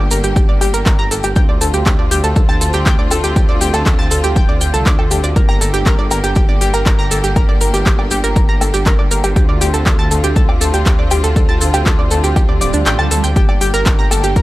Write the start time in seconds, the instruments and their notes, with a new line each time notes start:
Already playing: string section D3 A#3 G4
0.11 detuned saw bass G1, synth arpeggio sound A#4, open hi-hat, maracas
0.24 detuned saw bass G1, synth arpeggio sound G4, closed hi-hat, maracas
0.36 detuned saw bass F1, synth arpeggio sound G4, kick, closed hi-hat, maracas
0.49 detuned saw bass G1, synth arpeggio sound D5
0.61 detuned saw bass G1, synth arpeggio sound G4, open hi-hat, low woodblock, maracas
0.74 detuned saw bass G1, synth arpeggio sound A#4, closed hi-hat, maracas
0.86 detuned saw bass G1, synth arpeggio sound A#4, kick, clap, closed hi-hat, maracas
0.99 detuned saw bass G1, synth arpeggio sound A#5
1.11 detuned saw bass G1, synth arpeggio sound A4, open hi-hat, maracas
1.23 detuned saw bass G1, synth arpeggio sound G4, closed hi-hat, low woodblock, maracas
1.36 detuned saw bass D2, string section D3 C4 F4, synth arpeggio sound G5, kick, closed hi-hat, maracas
1.49 detuned saw bass D2, synth arpeggio sound D5
1.61 detuned saw bass D2, synth arpeggio sound A4, open hi-hat, maracas
1.74 detuned saw bass D2, synth arpeggio sound G4, closed hi-hat, maracas
1.86 detuned saw bass D2, synth arpeggio sound G4, kick, clap, closed hi-hat, low woodblock, maracas
1.99 detuned saw bass D2, synth arpeggio sound D5
2.11 detuned saw bass D2, synth arpeggio sound G4, open hi-hat, maracas
2.24 detuned saw bass D2, synth arpeggio sound A4, closed hi-hat, maracas
2.36 detuned saw bass C2, synth arpeggio sound A4, kick, closed hi-hat, maracas
2.49 detuned saw bass D2, synth arpeggio sound A5, low woodblock
2.61 detuned saw bass D2, synth arpeggio sound A4, open hi-hat, maracas
2.73 detuned saw bass D2, synth arpeggio sound G4, closed hi-hat, maracas
2.86 detuned saw bass D2, synth arpeggio sound G5, kick, clap, closed hi-hat, maracas
2.99 detuned saw bass D2, synth arpeggio sound D5
3.11 detuned saw bass D2, synth arpeggio sound A4, open hi-hat, low woodblock, maracas
3.24 detuned saw bass D2, synth arpeggio sound G4, closed hi-hat, maracas
3.36 detuned saw bass D2, synth arpeggio sound G4, kick, closed hi-hat, maracas
3.49 detuned saw bass D2, synth arpeggio sound D5
3.61 detuned saw bass D2, synth arpeggio sound G4, open hi-hat, maracas
3.74 detuned saw bass D2, synth arpeggio sound A4, closed hi-hat, low woodblock, maracas
3.86 detuned saw bass D2, synth arpeggio sound A4, kick, clap, closed hi-hat, maracas
3.99 detuned saw bass D2, synth arpeggio sound A5
4.11 detuned saw bass D2, synth arpeggio sound A4, open hi-hat, maracas
4.24 detuned saw bass D2, synth arpeggio sound G4, closed hi-hat, maracas
4.36 detuned saw bass D1, synth arpeggio sound G5, kick, closed hi-hat, low woodblock, maracas
4.49 detuned saw bass D2, synth arpeggio sound D5
4.61 detuned saw bass D2, synth arpeggio sound G5, open hi-hat, maracas
4.74 detuned saw bass C2, synth arpeggio sound A4, closed hi-hat, maracas
4.86 detuned saw bass D2, synth arpeggio sound D5, kick, clap, closed hi-hat, maracas
4.99 detuned saw bass D2, synth arpeggio sound A4, low woodblock
5.11 detuned saw bass D2, synth arpeggio sound G4, open hi-hat, maracas
5.24 detuned saw bass D2, synth arpeggio sound D5, closed hi-hat, maracas
5.36 detuned saw bass G1, string section A#3 G4, synth arpeggio sound A#4, kick, closed hi-hat, maracas
5.49 detuned saw bass G1, synth arpeggio sound A#5, low woodblock
5.61 detuned saw bass G1, synth arpeggio sound A4, open hi-hat, maracas
5.74 detuned saw bass G1, synth arpeggio sound G4, closed hi-hat, maracas
5.86 detuned saw bass G1, synth arpeggio sound A#4, kick, clap, closed hi-hat, maracas
5.99 detuned saw bass G1, synth arpeggio sound D5
6.11 detuned saw bass G1, synth arpeggio sound A#4, open hi-hat, low woodblock, maracas
6.24 detuned saw bass G1, synth arpeggio sound G4, closed hi-hat, maracas
6.35 detuned saw bass F1, synth arpeggio sound G4, kick, closed hi-hat, maracas
6.49 detuned saw bass G1, synth arpeggio sound D5
6.61 detuned saw bass G1, synth arpeggio sound G4, open hi-hat, maracas
6.74 detuned saw bass G1, synth arpeggio sound A#4, closed hi-hat, low woodblock, maracas
6.86 detuned saw bass G1, synth arpeggio sound A#4, kick, clap, closed hi-hat, maracas
6.99 detuned saw bass G1, synth arpeggio sound A#5
7.11 detuned saw bass G1, synth arpeggio sound A4, open hi-hat, maracas
7.24 detuned saw bass G1, synth arpeggio sound G4, closed hi-hat, maracas
7.36 detuned saw bass G1, synth arpeggio sound A#4, kick, closed hi-hat, low woodblock, maracas
7.49 detuned saw bass G1, synth arpeggio sound D5
7.61 detuned saw bass G1, synth arpeggio sound A#4, open hi-hat, maracas
7.74 detuned saw bass G1, synth arpeggio sound G4, closed hi-hat, maracas
7.86 detuned saw bass G1, synth arpeggio sound G4, kick, clap, closed hi-hat, maracas
7.99 detuned saw bass G1, synth arpeggio sound D5, low woodblock
8.11 detuned saw bass G1, synth arpeggio sound G4, open hi-hat, maracas
8.24 detuned saw bass G1, synth arpeggio sound A#4, closed hi-hat, maracas
8.36 detuned saw bass F1, synth arpeggio sound A#4, kick, closed hi-hat, maracas
8.49 detuned saw bass G1, synth arpeggio sound A#5
8.61 detuned saw bass G1, synth arpeggio sound A4, open hi-hat, low woodblock, maracas
8.74 detuned saw bass G1, synth arpeggio sound G4, closed hi-hat, maracas
8.86 detuned saw bass G1, synth arpeggio sound A#4, kick, clap, closed hi-hat, maracas
8.99 detuned saw bass G1, synth arpeggio sound D5
9.11 detuned saw bass G1, synth arpeggio sound A#4, open hi-hat, maracas
9.24 detuned saw bass G1, synth arpeggio sound G4, closed hi-hat, low woodblock, maracas
9.36 detuned saw bass D2, string section C4 F4, synth arpeggio sound G4, kick, closed hi-hat, maracas
9.49 detuned saw bass D2, synth arpeggio sound D5
9.61 detuned saw bass D2, synth arpeggio sound G4, open hi-hat, maracas
9.74 detuned saw bass D2, synth arpeggio sound A4, closed hi-hat, maracas
9.86 detuned saw bass D2, synth arpeggio sound A4, kick, clap, closed hi-hat, low woodblock, maracas
9.99 detuned saw bass D2, synth arpeggio sound A5
10.11 detuned saw bass D2, synth arpeggio sound A4, open hi-hat, maracas
10.24 detuned saw bass D2, synth arpeggio sound G4, closed hi-hat, maracas
10.36 detuned saw bass C2, synth arpeggio sound A4, kick, closed hi-hat, maracas
10.49 detuned saw bass D2, synth arpeggio sound D5, low woodblock
10.61 detuned saw bass D2, synth arpeggio sound A4, open hi-hat, maracas
10.74 detuned saw bass D2, synth arpeggio sound G4, closed hi-hat, maracas
10.86 detuned saw bass D2, synth arpeggio sound G4, kick, clap, closed hi-hat, maracas
10.99 detuned saw bass D2, synth arpeggio sound D5
11.11 detuned saw bass D2, synth arpeggio sound G4, open hi-hat, low woodblock, maracas
11.24 detuned saw bass D2, synth arpeggio sound A4, closed hi-hat, maracas
11.36 detuned saw bass D2, synth arpeggio sound A4, kick, closed hi-hat, maracas
11.49 detuned saw bass D2, synth arpeggio sound A5
11.61 detuned saw bass D2, synth arpeggio sound A4, open hi-hat, maracas
11.74 detuned saw bass D2, synth arpeggio sound G4, closed hi-hat, low woodblock, maracas
11.86 detuned saw bass D2, synth arpeggio sound A4, kick, clap, closed hi-hat, maracas
11.99 detuned saw bass D2, synth arpeggio sound D5
12.11 detuned saw bass D2, synth arpeggio sound A4, open hi-hat, maracas
12.24 detuned saw bass D2, synth arpeggio sound G4, closed hi-hat, maracas
12.36 detuned saw bass C2, synth arpeggio sound G4, kick, closed hi-hat, swell, low woodblock, maracas
12.49 detuned saw bass D2, synth arpeggio sound D5
12.61 detuned saw bass D1, synth arpeggio sound D5, open hi-hat, maracas
12.73 detuned saw bass D2, synth arpeggio sound D4, closed hi-hat, maracas
12.86 detuned saw bass A1, synth arpeggio sound G5, clap, closed hi-hat, maracas
12.99 detuned saw bass D2, synth arpeggio sound A5, low woodblock
13.11 detuned saw bass D2, synth arpeggio sound A4, open hi-hat, maracas
13.24 detuned saw bass D2, synth arpeggio sound G5, closed hi-hat, maracas
13.36 detuned saw bass G1, string section D3 A#3 G4, synth arpeggio sound G4, kick, closed hi-hat, maracas
13.49 detuned saw bass G1, synth arpeggio sound D5, low woodblock
13.61 detuned saw bass G1, synth arpeggio sound G4, open hi-hat, maracas
13.74 detuned saw bass G1, synth arpeggio sound A#4, closed hi-hat, maracas
13.85 detuned saw bass G1, synth arpeggio sound A#4, kick, clap, closed hi-hat, maracas
13.99 detuned saw bass G1, synth arpeggio sound A#5
14.11 detuned saw bass G1, synth arpeggio sound A4, open hi-hat, low woodblock, maracas
14.24 detuned saw bass G1, synth arpeggio sound G4, closed hi-hat, maracas
14.36 detuned saw bass F1, synth arpeggio sound A#4, kick, closed hi-hat, maracas